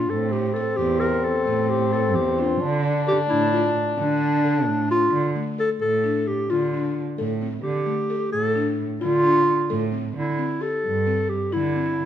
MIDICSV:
0, 0, Header, 1, 5, 480
1, 0, Start_track
1, 0, Key_signature, -1, "minor"
1, 0, Tempo, 456621
1, 112, Time_signature, 11, 3, 24, 8
1, 12670, End_track
2, 0, Start_track
2, 0, Title_t, "Clarinet"
2, 0, Program_c, 0, 71
2, 0, Note_on_c, 0, 65, 83
2, 100, Note_on_c, 0, 69, 83
2, 115, Note_off_c, 0, 65, 0
2, 334, Note_on_c, 0, 67, 71
2, 350, Note_off_c, 0, 69, 0
2, 562, Note_on_c, 0, 69, 79
2, 578, Note_off_c, 0, 67, 0
2, 801, Note_on_c, 0, 67, 86
2, 817, Note_off_c, 0, 69, 0
2, 1045, Note_on_c, 0, 70, 81
2, 1061, Note_off_c, 0, 67, 0
2, 1299, Note_on_c, 0, 69, 84
2, 1315, Note_off_c, 0, 70, 0
2, 1784, Note_on_c, 0, 67, 72
2, 1800, Note_off_c, 0, 69, 0
2, 2021, Note_on_c, 0, 69, 79
2, 2037, Note_off_c, 0, 67, 0
2, 2258, Note_on_c, 0, 67, 71
2, 2274, Note_off_c, 0, 69, 0
2, 2516, Note_on_c, 0, 65, 69
2, 2532, Note_off_c, 0, 67, 0
2, 2952, Note_off_c, 0, 65, 0
2, 3235, Note_on_c, 0, 67, 86
2, 3343, Note_off_c, 0, 67, 0
2, 3465, Note_on_c, 0, 64, 80
2, 3916, Note_off_c, 0, 64, 0
2, 4194, Note_on_c, 0, 62, 100
2, 5113, Note_off_c, 0, 62, 0
2, 5164, Note_on_c, 0, 65, 88
2, 5606, Note_off_c, 0, 65, 0
2, 5886, Note_on_c, 0, 69, 85
2, 5992, Note_off_c, 0, 69, 0
2, 6109, Note_on_c, 0, 69, 90
2, 6592, Note_on_c, 0, 67, 75
2, 6608, Note_off_c, 0, 69, 0
2, 6834, Note_on_c, 0, 65, 75
2, 6850, Note_off_c, 0, 67, 0
2, 7556, Note_off_c, 0, 65, 0
2, 8021, Note_on_c, 0, 67, 82
2, 8707, Note_off_c, 0, 67, 0
2, 8747, Note_on_c, 0, 69, 99
2, 9198, Note_off_c, 0, 69, 0
2, 9473, Note_on_c, 0, 65, 109
2, 10392, Note_off_c, 0, 65, 0
2, 10678, Note_on_c, 0, 64, 80
2, 11162, Note_on_c, 0, 69, 85
2, 11178, Note_off_c, 0, 64, 0
2, 11870, Note_on_c, 0, 67, 72
2, 11885, Note_off_c, 0, 69, 0
2, 12117, Note_on_c, 0, 64, 91
2, 12133, Note_off_c, 0, 67, 0
2, 12670, Note_off_c, 0, 64, 0
2, 12670, End_track
3, 0, Start_track
3, 0, Title_t, "Marimba"
3, 0, Program_c, 1, 12
3, 345, Note_on_c, 1, 60, 61
3, 503, Note_off_c, 1, 60, 0
3, 593, Note_on_c, 1, 69, 61
3, 748, Note_off_c, 1, 69, 0
3, 831, Note_on_c, 1, 60, 72
3, 987, Note_off_c, 1, 60, 0
3, 1065, Note_on_c, 1, 67, 70
3, 1378, Note_off_c, 1, 67, 0
3, 1547, Note_on_c, 1, 60, 69
3, 1860, Note_off_c, 1, 60, 0
3, 2034, Note_on_c, 1, 69, 63
3, 2344, Note_off_c, 1, 69, 0
3, 2505, Note_on_c, 1, 62, 64
3, 2663, Note_off_c, 1, 62, 0
3, 2982, Note_on_c, 1, 62, 64
3, 3141, Note_off_c, 1, 62, 0
3, 3225, Note_on_c, 1, 69, 60
3, 3383, Note_off_c, 1, 69, 0
3, 3467, Note_on_c, 1, 62, 73
3, 3625, Note_off_c, 1, 62, 0
3, 3708, Note_on_c, 1, 65, 66
3, 4021, Note_off_c, 1, 65, 0
3, 4181, Note_on_c, 1, 62, 69
3, 4496, Note_off_c, 1, 62, 0
3, 4671, Note_on_c, 1, 69, 64
3, 4983, Note_off_c, 1, 69, 0
3, 5148, Note_on_c, 1, 62, 60
3, 5306, Note_off_c, 1, 62, 0
3, 5629, Note_on_c, 1, 57, 61
3, 5786, Note_off_c, 1, 57, 0
3, 5870, Note_on_c, 1, 69, 53
3, 6183, Note_off_c, 1, 69, 0
3, 6349, Note_on_c, 1, 62, 63
3, 6662, Note_off_c, 1, 62, 0
3, 6833, Note_on_c, 1, 65, 67
3, 6989, Note_off_c, 1, 65, 0
3, 7078, Note_on_c, 1, 62, 66
3, 7388, Note_off_c, 1, 62, 0
3, 7552, Note_on_c, 1, 69, 67
3, 7709, Note_off_c, 1, 69, 0
3, 7793, Note_on_c, 1, 60, 58
3, 7949, Note_off_c, 1, 60, 0
3, 8267, Note_on_c, 1, 57, 62
3, 8425, Note_off_c, 1, 57, 0
3, 8514, Note_on_c, 1, 69, 59
3, 8825, Note_off_c, 1, 69, 0
3, 8994, Note_on_c, 1, 62, 66
3, 9306, Note_off_c, 1, 62, 0
3, 9473, Note_on_c, 1, 65, 68
3, 9629, Note_off_c, 1, 65, 0
3, 9711, Note_on_c, 1, 62, 68
3, 10023, Note_off_c, 1, 62, 0
3, 10196, Note_on_c, 1, 69, 69
3, 10351, Note_off_c, 1, 69, 0
3, 10427, Note_on_c, 1, 60, 62
3, 10585, Note_off_c, 1, 60, 0
3, 10919, Note_on_c, 1, 60, 64
3, 11073, Note_off_c, 1, 60, 0
3, 11155, Note_on_c, 1, 67, 58
3, 11465, Note_off_c, 1, 67, 0
3, 11636, Note_on_c, 1, 60, 64
3, 11946, Note_off_c, 1, 60, 0
3, 12114, Note_on_c, 1, 64, 69
3, 12269, Note_off_c, 1, 64, 0
3, 12357, Note_on_c, 1, 60, 68
3, 12666, Note_off_c, 1, 60, 0
3, 12670, End_track
4, 0, Start_track
4, 0, Title_t, "French horn"
4, 0, Program_c, 2, 60
4, 96, Note_on_c, 2, 60, 85
4, 2741, Note_on_c, 2, 62, 106
4, 2757, Note_off_c, 2, 60, 0
4, 5149, Note_off_c, 2, 62, 0
4, 12670, End_track
5, 0, Start_track
5, 0, Title_t, "Cello"
5, 0, Program_c, 3, 42
5, 114, Note_on_c, 3, 45, 85
5, 659, Note_off_c, 3, 45, 0
5, 835, Note_on_c, 3, 40, 81
5, 1380, Note_off_c, 3, 40, 0
5, 1544, Note_on_c, 3, 45, 87
5, 2264, Note_on_c, 3, 40, 85
5, 2280, Note_off_c, 3, 45, 0
5, 2631, Note_off_c, 3, 40, 0
5, 2746, Note_on_c, 3, 50, 89
5, 3295, Note_off_c, 3, 50, 0
5, 3459, Note_on_c, 3, 45, 82
5, 4011, Note_off_c, 3, 45, 0
5, 4190, Note_on_c, 3, 50, 88
5, 4909, Note_on_c, 3, 45, 84
5, 4924, Note_off_c, 3, 50, 0
5, 5275, Note_off_c, 3, 45, 0
5, 5392, Note_on_c, 3, 50, 83
5, 5575, Note_off_c, 3, 50, 0
5, 6107, Note_on_c, 3, 45, 76
5, 6657, Note_off_c, 3, 45, 0
5, 6827, Note_on_c, 3, 50, 73
5, 7376, Note_off_c, 3, 50, 0
5, 7554, Note_on_c, 3, 45, 75
5, 7919, Note_off_c, 3, 45, 0
5, 8036, Note_on_c, 3, 50, 76
5, 8218, Note_off_c, 3, 50, 0
5, 8757, Note_on_c, 3, 45, 76
5, 9303, Note_off_c, 3, 45, 0
5, 9481, Note_on_c, 3, 50, 79
5, 10025, Note_off_c, 3, 50, 0
5, 10200, Note_on_c, 3, 45, 80
5, 10562, Note_off_c, 3, 45, 0
5, 10687, Note_on_c, 3, 50, 82
5, 10864, Note_off_c, 3, 50, 0
5, 11396, Note_on_c, 3, 43, 74
5, 11941, Note_off_c, 3, 43, 0
5, 12120, Note_on_c, 3, 50, 82
5, 12663, Note_off_c, 3, 50, 0
5, 12670, End_track
0, 0, End_of_file